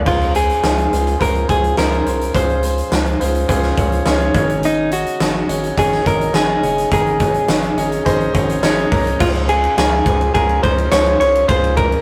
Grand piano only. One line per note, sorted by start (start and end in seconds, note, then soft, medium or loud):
0.05 0.88 G#2 soft
0.05 0.30 C#4 medium
0.05 0.30 F4 medium
0.05 0.30 G#4 medium
0.05 0.30 C5 medium
0.34 0.58 C#4 medium
0.34 0.58 F4 medium
0.34 0.58 G#4 medium
0.34 0.58 C5 medium
0.62 0.87 C#4 medium
0.62 0.87 F4 medium
0.62 0.87 G#4 medium
0.62 0.87 C5 medium
0.91 1.15 C#4 medium
0.91 1.15 F4 medium
0.91 1.15 G#4 medium
0.91 1.15 C5 medium
1.19 1.44 C#4 medium
1.19 1.44 F4 medium
1.19 1.44 G#4 medium
1.19 1.44 C5 medium
1.48 1.72 C#4 medium
1.48 1.72 F4 medium
1.48 1.73 G#4 medium
1.48 1.72 C5 medium
1.77 2.01 C#4 medium
1.77 2.01 F4 medium
1.77 2.01 G#4 medium
1.77 2.02 C5 loud
2.06 2.30 C#4 medium
2.06 2.30 F4 medium
2.06 2.30 G#4 medium
2.06 2.30 C5 medium
2.34 3.16 G#2 medium
2.34 2.58 C#4 medium
2.34 2.59 F4 medium
2.34 2.58 G#4 medium
2.34 2.59 C5 loud
2.63 2.87 C#4 medium
2.63 2.87 F4 medium
2.63 2.87 G#4 medium
2.63 2.87 C5 medium
2.91 3.15 C#4 medium
2.91 3.15 F4 medium
2.91 3.16 G#4 medium
2.91 3.16 A#4 medium
3.20 3.44 C#4 medium
3.20 3.44 F4 medium
3.20 3.44 G#4 medium
3.20 3.44 C5 medium
3.48 3.73 C#4 medium
3.48 3.73 F4 medium
3.48 3.73 G#4 medium
3.48 3.73 C5 loud
3.77 4.01 C#4 medium
3.77 4.02 F4 medium
3.77 4.01 G#4 medium
3.77 4.02 C#5 medium
4.06 4.30 C#4 loud
4.06 4.30 F4 medium
4.06 4.30 G#4 loud
4.06 4.30 C#5 loud
4.34 5.16 G#2 medium
4.34 5.16 D#3 medium
4.34 4.82 C#4 medium
4.34 4.82 D#4 medium
4.34 4.82 G#4 medium
4.34 4.83 C#5 medium
4.91 5.15 C#4 medium
4.91 5.15 D#4 medium
4.91 5.16 G#4 medium
4.91 5.16 D#5 medium
5.20 5.44 C#4 medium
5.20 5.44 D#4 medium
5.20 5.44 G#4 medium
5.20 5.44 D#5 medium
5.49 5.73 C#4 medium
5.49 5.73 D#4 medium
5.49 5.73 G#4 medium
5.49 5.73 C#5 medium
5.77 6.01 C#4 medium
5.77 6.01 D#4 medium
5.77 6.01 G#4 medium
5.77 6.02 C#5 medium
6.05 6.29 C#4 medium
6.05 6.29 D#4 medium
6.05 6.30 G#4 medium
6.05 6.30 D#5 medium
6.33 6.57 C#4 medium
6.33 6.58 D#4 medium
6.33 6.58 G#4 medium
6.33 6.58 D#5 medium
6.62 7.45 G#2 medium
6.62 7.45 D#3 medium
6.62 6.87 C#4 medium
6.62 6.87 D#4 medium
6.62 6.87 G#4 medium
6.62 6.87 C#5 medium
6.91 7.15 C#4 medium
6.91 7.15 D#4 medium
6.91 7.16 G#4 medium
6.91 7.16 A#4 medium
7.20 7.44 C#4 medium
7.20 7.44 D#4 medium
7.20 7.44 G#4 medium
7.20 7.44 C#5 medium
7.48 7.72 C#4 medium
7.48 7.72 D#4 medium
7.48 7.72 G#4 medium
7.48 7.73 C#5 medium
7.77 8.01 C#4 medium
7.77 8.01 D#4 medium
7.77 8.01 G#4 medium
7.77 8.02 C#5 medium
8.05 8.29 C#4 loud
8.05 8.30 D#4 loud
8.05 8.30 G#4 medium
8.05 8.30 C5 loud
8.34 8.58 C#4 medium
8.34 8.58 D#4 medium
8.34 8.58 G#4 medium
8.34 8.58 C#5 medium
8.63 8.87 C#4 loud
8.63 8.87 D#4 loud
8.63 8.87 G#4 medium
8.63 8.87 C#5 loud
8.91 9.15 C#4 medium
8.91 9.15 D#4 medium
8.91 9.15 G#4 medium
8.91 9.16 A#4 medium
9.20 10.02 G#2 medium
9.20 9.44 C#4 medium
9.20 9.44 F4 medium
9.20 9.44 G#4 medium
9.20 9.44 C5 medium
9.49 9.73 C#4 medium
9.49 9.73 F4 medium
9.49 9.73 G#4 medium
9.49 9.73 C5 medium
9.78 10.01 C#4 medium
9.78 10.01 F4 medium
9.78 10.02 G#4 medium
9.78 10.02 A#4 medium
10.05 10.30 C#4 medium
10.05 10.30 F4 medium
10.05 10.30 G#4 medium
10.05 10.30 C5 medium
10.34 10.58 C#4 medium
10.34 10.58 F4 medium
10.34 10.59 G#4 medium
10.34 10.59 A#4 loud
10.63 10.87 C#4 medium
10.63 10.87 F4 medium
10.63 10.87 G#4 medium
10.63 10.87 C5 medium
10.92 11.16 C#4 medium
10.92 11.16 F4 medium
10.92 11.16 G#4 medium
10.92 11.16 C5 loud
11.20 11.44 C#4 medium
11.20 11.44 F4 medium
11.20 11.45 G#4 medium
11.20 11.45 C5 medium
11.49 12.02 G#2 medium
11.49 11.73 C#4 medium
11.49 11.73 F4 medium
11.49 11.73 G#4 medium
11.49 11.73 C5 loud
11.78 12.02 C#4 medium
11.78 12.02 F4 medium
11.78 12.02 G#4 medium
11.78 12.02 A#4 medium